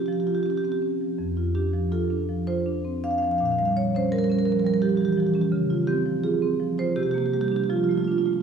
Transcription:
0.00 1.15 D#3 soft
0.00 0.20 C#4 soft
0.00 0.06 G4 medium
0.06 0.38 F3 soft
0.06 0.13 G4 soft
0.13 0.20 G4 soft
0.20 0.27 G4 soft
0.27 0.56 F4 soft
0.27 0.35 G4 medium
0.35 0.43 G4 soft
0.43 0.75 C#4 soft
0.43 0.50 G4 soft
0.50 0.57 G4 soft
0.57 0.65 G4 medium
0.64 0.83 C4 soft
0.64 0.72 G4 soft
0.72 0.78 G4 medium
0.82 1.12 C#4 soft
1.01 1.19 F3 soft
1.18 3.36 F2 soft
1.37 1.66 F4 soft
1.55 1.84 D4 soft
1.55 1.90 G4 medium
1.74 2.03 F3 soft
1.92 2.21 F4 soft
1.92 2.45 A4 medium
2.10 2.39 D4 soft
2.29 2.58 F3 soft
2.47 2.77 F4 soft
2.47 3.02 C5 medium
2.66 2.96 D4 soft
2.85 3.04 C4 soft
3.04 3.33 D4 soft
3.04 3.11 F5 medium
3.11 3.18 F5 soft
3.18 3.24 F5 medium
3.22 3.41 F3 soft
3.22 3.31 F5 soft
3.31 3.38 F5 medium
3.38 5.49 A#2 soft
3.38 3.45 F5 soft
3.45 3.52 F5 medium
3.52 3.58 F5 medium
3.58 3.87 G3 soft
3.58 3.65 F5 medium
3.65 3.73 F5 medium
3.76 4.05 F3 soft
3.76 3.94 C#5 medium
3.95 4.23 C#4 soft
3.95 4.13 C5 medium
4.12 4.40 G3 soft
4.12 4.18 A#4 medium
4.18 4.24 A#4 medium
4.24 4.32 A#4 medium
4.30 4.58 C#4 soft
4.30 4.38 A#4 medium
4.38 4.46 A#4 medium
4.46 4.75 F3 soft
4.46 4.52 A#4 medium
4.52 4.59 A#4 medium
4.59 4.67 A#4 medium
4.64 4.93 G3 soft
4.64 4.74 A#4 medium
4.74 4.80 A#4 medium
4.82 5.10 F3 soft
4.82 4.89 G4 medium
4.89 4.97 G4 soft
4.97 5.18 E3 soft
4.97 5.05 G4 medium
5.05 5.12 G4 medium
5.12 5.20 G4 soft
5.17 5.45 F3 soft
5.17 5.27 G4 medium
5.27 5.34 G4 soft
5.34 5.53 C#4 soft
5.34 5.41 G4 soft
5.41 5.49 G4 soft
5.52 6.92 C#3 medium
5.70 5.99 F4 soft
5.87 6.16 C4 soft
5.87 6.22 G4 medium
6.06 6.35 F3 soft
6.23 6.52 F4 soft
6.23 6.76 G#4 medium
6.42 6.71 C4 soft
6.60 6.89 F3 soft
6.78 6.97 F4 soft
6.78 6.97 C5 medium
6.96 7.68 C3 soft
6.96 7.03 G4 medium
7.03 7.11 G4 medium
7.11 7.44 A#3 soft
7.11 7.18 G4 medium
7.18 7.26 G4 medium
7.26 7.34 G4 medium
7.33 7.63 G3 soft
7.33 7.41 G4 medium
7.41 7.48 G4 medium
7.48 7.70 D4 soft
7.48 7.56 G4 medium
7.56 7.64 G4 medium
7.64 7.67 G4 medium
7.69 8.43 F3 medium
7.69 7.77 F4 medium
7.77 7.84 F4 soft
7.84 7.91 F4 soft
7.89 8.19 A3 soft
7.89 7.98 F4 soft
7.98 8.04 F4 soft
8.04 8.38 D4 soft
8.04 8.12 F4 soft
8.12 8.18 F4 soft
8.18 8.26 F4 soft
8.26 8.43 A3 soft
8.26 8.33 F4 medium
8.33 8.43 F4 soft

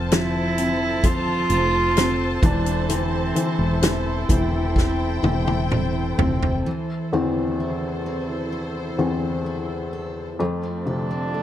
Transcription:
0.00 1.46 F1 loud
0.00 0.10 F3 medium
0.00 2.39 F3 medium
0.00 2.42 F3 medium
0.00 0.57 C4 medium
0.00 0.58 F4 medium
0.00 6.62 A4 medium
0.00 6.61 C5 medium
0.00 4.24 A5 medium
0.11 1.03 F3 medium
0.11 1.04 C4 soft
0.11 1.06 E4 medium
0.11 snare loud
0.11 closed hi-hat medium
0.58 1.95 C4 soft
0.58 closed hi-hat medium
1.04 2.39 F3 medium
1.04 1.97 C4 medium
1.04 2.46 F4 loud
1.04 kick medium
1.04 closed hi-hat medium
1.50 2.39 F1 medium
1.50 2.52 F4 medium
1.50 closed hi-hat medium
1.97 2.41 C4 soft
1.97 3.82 C4 medium
1.97 snare medium
1.97 closed hi-hat medium
2.43 3.32 E1 medium
2.43 2.88 E3 medium
2.43 2.89 E3 medium
2.43 2.93 D4 medium
2.43 6.62 E4 medium
2.43 kick loud
2.43 closed hi-hat medium
2.66 closed hi-hat medium
2.89 3.34 E3 medium
2.89 6.65 E3 medium
2.89 3.83 C4 medium
2.89 closed hi-hat medium
3.35 3.81 E3 medium
3.35 4.29 E4 medium
3.35 closed hi-hat medium
3.59 4.25 E1 medium
3.82 4.27 E3 medium
3.82 4.76 C4 soft
3.82 snare loud
3.82 closed hi-hat medium
4.28 5.19 E1 medium
4.28 5.21 E3 soft
4.28 5.23 E4 medium
4.28 6.63 G5 medium
4.28 kick medium
4.28 closed hi-hat medium
4.76 5.70 C4 medium
4.76 kick medium
4.76 snare soft
5.23 6.15 E1 medium
5.23 6.62 E3 soft
5.23 6.18 E4 soft
5.23 high tom medium
5.48 high tom medium
5.71 7.13 C4 soft
5.71 mid tom medium
6.18 6.63 F1 medium
6.18 6.64 C4 medium
6.18 7.60 E4 medium
6.18 floor tom medium
6.43 floor tom medium
6.66 10.40 E3 medium
6.66 10.36 E4 medium
6.66 10.36 A4 medium
6.66 10.36 C5 medium
7.12 8.48 E2 soft
7.12 8.49 E3 soft
7.12 8.06 C4 soft
7.12 8.49 C4 soft
7.60 8.52 E4 soft
8.06 10.63 C4 soft
8.53 9.46 E4 soft
8.98 9.41 E2 soft
8.98 9.42 E3 soft
8.98 9.42 C4 soft
8.98 9.93 A4 soft
9.46 11.34 E4 soft
9.93 10.86 A4 medium
10.39 11.43 F2 medium
10.39 11.43 F3 medium
10.39 11.43 A3 medium
10.39 11.43 C4 medium
10.39 11.43 A4 medium
10.63 11.09 C4 soft
10.86 11.43 C3 soft
10.86 11.43 D4 medium
10.86 11.43 A4 soft
11.11 11.43 C4 soft
11.33 11.43 A3 soft
11.33 11.43 E4 soft

